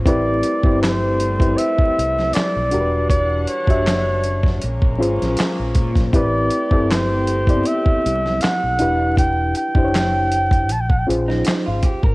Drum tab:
HH |x-x-x-xxx-x-x-x-|x-xxx-x-x-xxx-xx|x-x-x-xxx-x-x-x-|x-x-x-xxx-x-x-x-|
CP |----x-------x---|----x-------x---|----x-------x---|----x-------x---|
SD |----o------oo---|----o--o---oo--o|----o------oo---|----o------oo---|
BD |o--o---o-o------|o--o---o-o----oo|o--o---o-o------|o--o---o-o----oo|